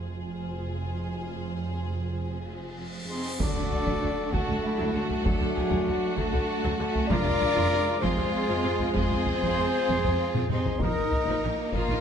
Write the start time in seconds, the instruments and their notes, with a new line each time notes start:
Already playing: double bass section F1, cello section F2, french horn section G#3 F4, viola section F4, violin section G#4 C5
1.52 cymbal swell
3.08 cello section C4, violin section D#4, trumpet G#4, french horn section C5, flute C6
3.39 double bass section D2, trombone section F#3 A3, viola section F#3 A3, cello section D4, violin section F#4, trumpet A4, french horn section D5, flute D6, taiko, impact
3.55 double bass section D2, viola section D3, taiko low
3.72 taiko low
3.85 double bass section D2, viola section F#3, taiko
4.01 double bass section D2, viola section D3
4.31 double bass section D2, viola section F#3, cello section A3, violin section D4 F#4, trumpet F#4, french horn section A4, flute A5, taiko
4.47 double bass section D2, viola section D3, taiko low
4.65 violin section E4
4.78 double bass section D2, viola section F#3
4.94 double bass section D2, viola section D3, violin section F#4
5.10 taiko low
5.24 double bass section D2, viola section F#3, cello section F#3, violin section A3 A4, trumpet D4, french horn section F#4, flute F#5, taiko
5.40 double bass section D2, viola section D3, taiko low
5.56 violin section G#4, taiko low
5.70 double bass section D2, viola section F#3, taiko
5.86 double bass section D2, viola section D3, violin section F#4
6.14 double bass section D2, viola section F#3, cello section A3, violin section D4, trumpet F#4, french horn section A4, flute A5, taiko
6.33 double bass section D2, viola section D3, taiko low
6.64 double bass section D2, viola section F#3
6.77 double bass section D2, cello section A3, violin section C#4, trumpet F#4, french horn section A4, flute A5
6.81 viola section D3
6.96 taiko low
7.07 double bass section F2, timpani F2, trombone section F3 G#3, cello section D4, violin section F4, trumpet A#4, french horn section D5, flute D6, taiko
7.12 viola section F3 G#3
7.25 double bass section F2, viola section C3, taiko low
7.41 taiko low
7.56 double bass section F2, viola section F3, taiko
7.71 double bass section F2, viola section C3
8.00 double bass section F2, viola section F3, cello section C4, violin section F4, trumpet G#4, french horn section C5, flute C6, taiko
8.18 double bass section F2, viola section C3, taiko low
8.48 double bass section F2, viola section F3
8.64 double bass section F2, viola section C3
8.79 taiko low
8.94 double bass section F2, viola section F3, cello section C4, violin section F4 G#4, trumpet G#4, french horn section C5, flute C6, taiko
9.10 double bass section F2, viola section C3, taiko low
9.26 taiko low
9.42 double bass section F2, viola section F3, taiko
9.57 double bass section F2, viola section C3
9.89 double bass section F2, viola section F3, taiko
10.04 double bass section F2, viola section C3, taiko low
10.34 double bass section F2, viola section F3, taiko mid
10.50 double bass section F2, viola section C3, cello section C4, violin section D#4, trumpet G#4, french horn section C5, flute C6, taiko mid
10.65 taiko low
10.78 double bass section A#1, trombone section F3 A#3, french horn section D#5, taiko
10.82 timpani A#2, viola section F3 A#3, cello section D#4, trumpet A#4, violin section A#4, flute D#6
10.96 double bass section A#1, viola section D#3, taiko low
11.11 taiko low
11.26 double bass section A#1, viola section F3, taiko
11.44 double bass section A#1, viola section D#3
11.72 double bass section A#1, cello section A#3, violin section D#4 F4, trumpet F4, french horn section A#4, flute A#5, taiko
11.76 viola section F3
11.88 double bass section A#1, viola section D#3, taiko low